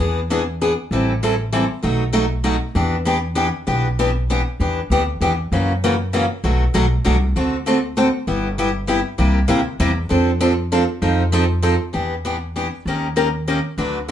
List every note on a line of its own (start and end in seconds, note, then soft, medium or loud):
0.00 0.73 E2 medium
0.00 0.19 E3 medium
0.00 0.19 B3 medium
0.00 0.19 D4 medium
0.00 0.20 G#4 medium
0.30 0.41 E3 medium
0.30 0.41 B3 medium
0.30 0.41 D4 loud
0.30 0.42 G#4 loud
0.61 0.72 E3 medium
0.61 0.72 B3 medium
0.61 0.72 D4 medium
0.61 0.72 G#4 medium
0.91 1.65 A1 medium
0.91 1.12 E3 medium
0.91 1.11 G3 medium
0.91 1.12 C4 medium
0.91 1.12 E4 medium
0.91 1.12 A4 medium
1.23 1.33 E3 medium
1.23 1.33 G3 medium
1.23 1.33 C4 medium
1.23 1.34 E4 loud
1.23 1.34 A4 loud
1.52 1.63 E3 loud
1.52 1.63 G3 medium
1.52 1.64 C4 loud
1.52 1.64 E4 medium
1.52 1.64 A4 medium
1.83 2.57 B1 medium
1.83 2.03 B2 medium
1.83 2.03 F#3 medium
1.83 2.03 A3 medium
1.83 2.03 D#4 medium
1.83 2.03 F#4 medium
2.13 2.24 B2 medium
2.13 2.25 F#3 medium
2.13 2.24 A3 loud
2.13 2.25 D#4 medium
2.13 2.25 F#4 loud
2.44 2.55 B2 medium
2.44 2.55 F#3 medium
2.44 2.55 A3 medium
2.44 2.55 D#4 medium
2.44 2.56 F#4 medium
2.75 3.49 E2 medium
2.75 2.95 E3 medium
2.75 2.95 B3 medium
2.75 2.95 D4 medium
2.75 2.95 G4 medium
3.05 3.17 E3 medium
3.05 3.17 B3 medium
3.05 3.17 D4 loud
3.05 3.17 G4 medium
3.35 3.47 E3 medium
3.35 3.47 B3 medium
3.35 3.47 D4 medium
3.35 3.47 G4 loud
3.67 4.41 B1 medium
3.67 3.87 E3 medium
3.67 3.87 B3 medium
3.67 3.87 D4 medium
3.67 3.87 G4 medium
3.99 4.09 E3 loud
3.99 4.10 B3 loud
3.99 4.09 D4 medium
3.99 4.10 G4 loud
4.30 4.40 E3 medium
4.30 4.40 B3 medium
4.30 4.40 D4 medium
4.30 4.41 G4 loud
4.60 4.84 E2 medium
4.60 4.79 E3 medium
4.60 4.80 B3 medium
4.60 4.80 D4 medium
4.60 4.80 G4 medium
4.90 5.16 D2 medium
4.90 5.02 E3 medium
4.90 5.02 B3 medium
4.90 5.02 D4 medium
4.90 5.02 G4 loud
5.21 5.47 E2 medium
5.21 5.32 E3 medium
5.21 5.32 B3 medium
5.21 5.32 D4 medium
5.21 5.32 G4 medium
5.52 6.25 F#2 medium
5.52 5.71 C#3 medium
5.52 5.72 E3 medium
5.52 5.72 A#3 medium
5.52 5.72 C#4 medium
5.52 5.72 F#4 medium
5.84 5.94 C#3 loud
5.84 5.94 E3 loud
5.84 5.94 A#3 medium
5.84 5.94 C#4 medium
5.84 5.94 F#4 medium
6.13 6.24 C#3 medium
6.13 6.24 E3 loud
6.13 6.24 A#3 medium
6.13 6.24 C#4 medium
6.13 6.24 F#4 loud
6.44 6.68 B1 medium
6.44 6.63 B2 medium
6.44 6.63 F#3 medium
6.44 6.63 A3 medium
6.44 6.64 D4 medium
6.44 6.64 F#4 medium
6.74 7.00 B1 medium
6.74 6.85 B2 medium
6.74 6.85 F#3 loud
6.74 6.85 A3 medium
6.74 6.85 D4 loud
6.74 6.85 F#4 loud
7.05 7.32 C2 medium
7.05 7.15 B2 medium
7.05 7.16 F#3 medium
7.05 7.16 A3 medium
7.05 7.16 D4 medium
7.05 7.16 F#4 medium
7.36 8.09 D2 medium
7.36 7.55 D3 medium
7.36 7.55 A3 medium
7.36 7.56 C4 medium
7.36 7.55 F#4 medium
7.36 7.56 A4 medium
7.66 7.77 D3 medium
7.66 7.77 A3 medium
7.66 7.77 C4 loud
7.66 7.77 F#4 medium
7.66 7.77 A4 loud
7.97 8.07 D3 medium
7.97 8.07 A3 medium
7.97 8.08 C4 medium
7.97 8.08 F#4 medium
7.97 8.08 A4 loud
8.27 9.01 G1 medium
8.27 8.47 G3 medium
8.27 8.47 B3 medium
8.27 8.47 E4 medium
8.27 8.47 G4 medium
8.58 8.69 G3 medium
8.58 8.69 B3 medium
8.58 8.69 E4 medium
8.58 8.69 G4 loud
8.87 8.99 G3 medium
8.87 8.99 B3 loud
8.87 8.99 E4 medium
8.87 8.99 G4 loud
9.18 9.43 C2 medium
9.18 9.38 C3 medium
9.18 9.38 G3 medium
9.18 9.38 A#3 medium
9.18 9.38 E4 medium
9.18 9.38 G4 medium
9.48 9.75 D2 medium
9.48 9.59 C3 medium
9.48 9.60 G3 loud
9.48 9.60 A#3 loud
9.48 9.60 E4 loud
9.48 9.60 G4 loud
9.80 10.06 E2 loud
9.80 9.91 C3 loud
9.80 9.91 G3 medium
9.80 9.91 A#3 loud
9.80 9.91 E4 loud
9.80 9.91 G4 loud
10.09 10.84 F2 medium
10.09 10.29 F3 medium
10.09 10.30 C4 medium
10.09 10.30 D4 medium
10.09 10.30 A4 medium
10.41 10.52 F3 medium
10.41 10.52 C4 loud
10.41 10.52 D4 loud
10.41 10.52 A4 loud
10.72 10.83 F3 medium
10.72 10.83 C4 loud
10.72 10.83 D4 loud
10.72 10.83 A4 loud
11.02 11.75 F2 medium
11.02 11.22 F3 medium
11.02 11.22 C4 medium
11.02 11.22 D#4 medium
11.02 11.22 A4 medium
11.32 11.43 F3 loud
11.32 11.44 C4 loud
11.32 11.44 D#4 loud
11.32 11.44 A4 loud
11.62 11.74 F3 loud
11.62 11.74 C4 loud
11.62 11.74 D#4 medium
11.62 11.74 A4 loud
11.93 12.68 E2 medium
11.93 12.13 E3 medium
11.93 12.13 B3 medium
11.93 12.13 D4 medium
11.93 12.14 G4 medium
12.25 12.36 E3 medium
12.25 12.36 B3 medium
12.25 12.36 D4 medium
12.25 12.36 G4 medium
12.56 12.66 E3 medium
12.56 12.67 B3 medium
12.56 12.67 D4 medium
12.56 12.67 G4 medium
12.86 13.59 D#2 medium
12.86 13.06 D#3 medium
12.86 13.06 A#3 medium
12.86 13.07 C#4 medium
12.86 13.07 G4 medium
12.86 13.06 A#4 medium
13.16 13.27 D#3 medium
13.16 13.27 A#3 medium
13.16 13.27 C#4 medium
13.16 13.27 G4 medium
13.16 13.27 A#4 medium
13.48 13.58 D#3 medium
13.48 13.58 A#3 medium
13.48 13.58 C#4 medium
13.48 13.58 G4 medium
13.48 13.58 A#4 medium
13.78 14.11 D2 medium
13.78 13.97 D3 medium
13.78 13.97 F#3 medium
13.78 13.98 A3 medium
13.78 13.98 D4 medium
13.78 13.98 F#4 medium
13.78 13.98 B4 medium